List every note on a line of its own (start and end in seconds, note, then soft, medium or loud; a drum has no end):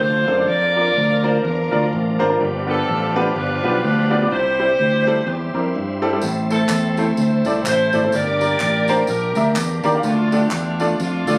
0.00 0.24 D2 loud
0.00 0.45 D3 medium
0.00 0.48 D3 medium
0.00 0.46 F3 medium
0.00 0.48 A3 medium
0.00 0.48 C4 medium
0.00 0.48 F4 medium
0.00 0.45 F4 medium
0.00 0.45 A4 medium
0.00 0.44 C5 loud
0.27 0.45 F#2 loud
0.27 0.34 C4 medium
0.27 0.34 D4 medium
0.27 0.34 F4 medium
0.27 0.34 A4 medium
0.27 0.34 C5 medium
0.37 0.48 C4 medium
0.37 0.48 D4 medium
0.37 0.48 F4 medium
0.37 0.48 A4 medium
0.37 0.48 D5 medium
0.47 0.89 F2 loud
0.47 2.35 F3 medium
0.47 2.35 A#3 medium
0.47 2.35 D4 medium
0.47 1.41 F4 medium
0.47 1.41 A#4 medium
0.47 1.24 D5 loud
0.76 0.88 A#3 medium
0.76 0.88 D4 medium
0.76 0.88 F4 medium
0.76 0.88 A#4 medium
0.76 0.88 D5 medium
0.97 1.37 D2 medium
1.23 1.36 A#3 medium
1.23 1.36 D4 medium
1.23 1.36 F4 medium
1.23 1.36 A#4 medium
1.23 1.43 C5 loud
1.23 1.36 D5 medium
1.44 1.68 E2 loud
1.44 2.36 D4 medium
1.44 2.36 F4 medium
1.44 1.92 A#4 medium
1.71 1.89 D2 medium
1.71 1.84 A#3 medium
1.71 1.84 D4 medium
1.71 1.84 F4 medium
1.71 1.84 A#4 medium
1.71 1.84 D5 medium
1.93 2.16 A1 medium
2.19 2.37 G#1 medium
2.19 2.25 A#3 medium
2.19 2.26 D4 medium
2.19 2.26 F4 medium
2.19 2.26 A#4 medium
2.19 2.26 C5 loud
2.29 2.40 A#3 medium
2.29 2.40 D4 medium
2.29 2.40 F4 medium
2.29 2.40 A#4 medium
2.29 2.40 C5 medium
2.40 2.81 G1 medium
2.40 3.11 G2 medium
2.40 4.27 F3 medium
2.40 4.27 G3 medium
2.40 4.28 B3 medium
2.40 4.27 D4 medium
2.40 4.27 G4 medium
2.67 2.79 B3 medium
2.67 2.79 D4 medium
2.67 3.36 D4 medium
2.67 2.79 F4 medium
2.67 3.36 F4 medium
2.67 2.79 G4 medium
2.67 3.13 A4 loud
2.67 2.79 B4 medium
2.89 3.29 A1 medium
3.15 3.27 B3 medium
3.15 3.28 D4 medium
3.15 3.27 F4 medium
3.15 3.28 G4 medium
3.15 3.35 A4 medium
3.15 3.28 B4 loud
3.36 3.59 G1 loud
3.36 4.28 D4 medium
3.36 4.28 F4 medium
3.36 3.83 B4 loud
3.63 3.81 B1 loud
3.63 3.75 B3 medium
3.63 3.75 D4 medium
3.63 3.75 F4 medium
3.63 3.75 G4 medium
3.63 3.75 B4 medium
3.84 4.24 D2 medium
3.84 4.10 B4 loud
4.10 4.17 B3 medium
4.10 4.17 D4 medium
4.10 4.17 F4 medium
4.10 4.17 G4 medium
4.10 4.30 B4 loud
4.10 4.17 D5 medium
4.21 4.31 B3 medium
4.21 4.31 D4 medium
4.21 4.31 F4 medium
4.21 4.31 G4 medium
4.21 4.31 D5 medium
4.31 4.72 C2 medium
4.31 5.03 C3 medium
4.31 6.18 G3 medium
4.31 6.18 C4 medium
4.31 4.37 D4 medium
4.31 5.23 E4 medium
4.31 5.23 G4 medium
4.31 5.27 C5 loud
4.37 6.21 E4 medium
4.59 4.71 G3 medium
4.59 4.71 C4 medium
4.59 4.71 E4 medium
4.59 4.71 G4 medium
4.59 4.71 C5 medium
4.80 5.20 D2 medium
5.07 5.19 G3 loud
5.07 5.19 C4 medium
5.07 5.19 E4 medium
5.07 5.19 G4 medium
5.07 5.19 A4 loud
5.27 5.50 E2 loud
5.27 6.19 C4 medium
5.27 6.19 E4 medium
5.27 5.75 G4 medium
5.54 5.71 F2 loud
5.54 5.66 G3 medium
5.54 5.66 C4 medium
5.54 5.66 E4 medium
5.54 5.66 G4 medium
5.54 5.66 A#4 medium
5.75 6.15 G2 loud
6.02 6.08 G3 medium
6.02 6.08 C4 medium
6.02 6.08 E4 medium
6.02 6.08 G4 medium
6.02 6.08 A4 loud
6.12 6.22 G3 medium
6.12 6.22 C4 medium
6.12 6.22 E4 medium
6.12 6.22 G4 medium
6.12 6.22 A4 medium
6.21 6.63 A1 medium
6.21 6.94 A2 medium
6.21 8.10 A3 medium
6.21 6.29 B3 medium
6.21 8.09 E4 medium
6.21 tambourine medium
6.28 8.13 C4 medium
6.50 6.62 A3 medium
6.50 6.62 C4 medium
6.50 7.42 C4 medium
6.50 6.62 E4 medium
6.50 7.18 E4 medium
6.50 6.62 A4 medium
6.50 7.15 A4 loud
6.50 6.62 C5 medium
6.50 tambourine medium
6.69 7.10 E2 medium
6.69 clap loud
6.69 tambourine loud
6.97 7.10 A3 medium
6.97 7.10 C4 medium
6.97 7.10 E4 medium
6.97 7.10 A4 medium
6.97 7.10 C5 medium
6.97 tambourine medium
7.17 7.42 D2 loud
7.17 7.67 E4 medium
7.17 7.67 A4 medium
7.17 7.66 C5 loud
7.17 tambourine medium
7.45 7.62 C2 medium
7.45 7.58 A3 medium
7.45 7.58 C4 medium
7.45 7.58 E4 medium
7.45 7.58 A4 medium
7.45 7.58 D5 medium
7.45 tambourine medium
7.66 7.89 A1 loud
7.66 8.11 E4 medium
7.66 8.11 A4 medium
7.66 8.11 C5 loud
7.66 clap loud
7.66 tambourine loud
7.93 8.10 G#1 medium
7.93 7.99 A3 medium
7.93 7.99 C4 medium
7.93 8.00 E4 medium
7.93 7.99 A4 medium
7.93 8.00 D5 medium
7.93 tambourine medium
8.04 8.13 A3 medium
8.04 8.13 C4 medium
8.04 8.14 E4 medium
8.04 8.14 A4 medium
8.04 8.14 C5 medium
8.12 8.54 G1 medium
8.12 8.85 G2 medium
8.12 8.20 A3 medium
8.12 10.01 D4 medium
8.12 9.06 G4 medium
8.12 10.01 G4 medium
8.12 9.06 A#4 loud
8.12 9.09 D5 loud
8.12 tambourine medium
8.20 10.04 A#3 medium
8.41 8.53 A#3 medium
8.41 8.53 D4 medium
8.41 8.53 G4 medium
8.41 8.53 A#4 medium
8.41 8.53 D5 medium
8.41 tambourine medium
8.60 9.02 A1 medium
8.60 clap loud
8.60 tambourine loud
8.88 9.01 A#3 loud
8.88 9.01 D4 medium
8.88 9.01 G4 medium
8.88 9.01 A#4 medium
8.88 9.01 C5 loud
8.88 tambourine medium
9.07 9.36 A#1 loud
9.07 10.01 D4 medium
9.07 10.01 G4 medium
9.07 9.54 A#4 medium
9.07 tambourine medium
9.35 9.53 D2 medium
9.35 9.48 A#3 medium
9.35 9.48 D4 medium
9.35 9.49 G4 medium
9.35 9.49 A#4 medium
9.35 9.49 E5 medium
9.35 tambourine medium
9.56 9.80 E2 loud
9.56 clap loud
9.56 tambourine loud
9.83 10.01 D#2 loud
9.83 9.90 A#3 loud
9.83 9.90 D4 medium
9.83 9.90 G4 medium
9.83 9.90 A#4 medium
9.83 9.91 D5 loud
9.83 tambourine medium
9.94 10.04 A#3 medium
9.94 10.04 D4 medium
9.94 10.05 G4 medium
9.94 10.05 A#4 medium
9.94 10.05 F5 medium
10.03 10.45 D2 loud
10.03 10.76 D3 medium
10.03 11.38 A3 medium
10.03 10.97 A3 medium
10.03 11.38 D4 medium
10.03 10.32 D4 medium
10.03 11.38 F4 medium
10.03 10.31 F4 loud
10.03 tambourine medium
10.32 10.44 A3 medium
10.32 10.44 D4 medium
10.32 11.00 D4 loud
10.32 10.44 F4 medium
10.32 10.80 G4 loud
10.32 10.44 A4 medium
10.32 10.44 D5 medium
10.32 tambourine medium
10.51 10.93 E2 medium
10.51 clap loud
10.51 tambourine loud
10.80 10.92 A3 medium
10.80 10.92 D4 medium
10.80 10.92 F4 medium
10.80 10.92 A4 medium
10.80 10.92 D5 medium
10.80 tambourine medium
11.00 11.24 F2 loud
11.00 11.38 A3 medium
11.00 11.38 D4 medium
11.00 11.38 F4 medium
11.00 tambourine medium
11.27 11.38 D2 medium
11.27 11.38 A3 medium
11.27 11.38 D4 medium
11.27 11.38 F4 medium
11.27 11.38 A4 medium
11.27 11.38 D5 medium
11.27 tambourine medium